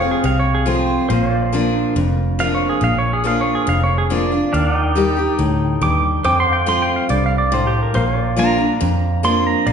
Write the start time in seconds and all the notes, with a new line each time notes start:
Already playing: F1 F2 C5 F5
0.02 C4 F4
0.11 G#4
0.24 C2 C3 F5
0.39 C#5
0.55 G#4
0.66 F3 A3 C4 F4 C5
1.09 A#1 A#2 C5 F5
1.34 D5
1.53 F3 A#3 D4 F4
1.96 F1 F2
2.39 F3 A#3 D4 F4 F5
2.55 C#5
2.69 G#4
2.81 A#1 A#2 F5
2.98 C#5
3.13 G#4
3.24 F3 A#3 D4 F4 F5
3.41 C#5
3.55 G#4
3.67 F1 F2 F5
3.84 C#5
3.98 G#4
4.10 F3 A#3 D4 F4 D5
4.32 D4 F4
4.53 D#2 D#3 D4 F5
4.73 D#4
4.78 G5
4.95 G3 A#3 D#4 G4
5.17 D#4 G4
5.39 D2 A2
5.81 D#2 G2 D6
6.24 F2 C5 G5 D6
6.40 C6
6.51 F5 G5
6.66 F3 A3 C4 F4 C6
6.82 G5
6.96 F5
7.09 C2 G2 D5
7.26 F5
7.38 D5
7.52 A2 C5
7.67 G4
7.83 A#4
7.94 A#1 A#2 C5 F5
8.20 D5
8.37 F3 A#3 D4 F4 A#5
8.58 D4 F4
8.81 F2
9.23 F3 A#3 D4 F4 C6
9.47 A#5
9.66 A#1 A#2 D5 F5